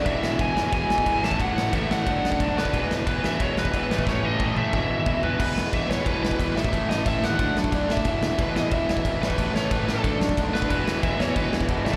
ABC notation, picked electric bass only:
X:1
M:4/4
L:1/8
Q:1/4=180
K:Alyd
V:1 name="Picked electric bass" clef=bass
E,,, E,,, E,,, E,, E,,, E,,, E,, A,,, | A,,, A,,, A,,, A,,, =D,, F,, B,,, D,, | E,,, E,,, E,,, E,, E,,, E,,, E,, A,,, | A,,, A,,, A,,, F,,, E,,, G,,, C,, E,,, |
E,,, E,,, E,,, E,, E,,, E,,, E,, A,,, | A,,, A,,, A,,, D,, =D,, F,, B,,, D,, | E,,, E,,, E,,, E,, E,,, E,,, G,,, A,,, | A,,, A,,, A,,, A,,, =D,, F,, B,,, D,, |
E,,, E,,, E,,, E,, E,,, E,,, E,, A,,, |]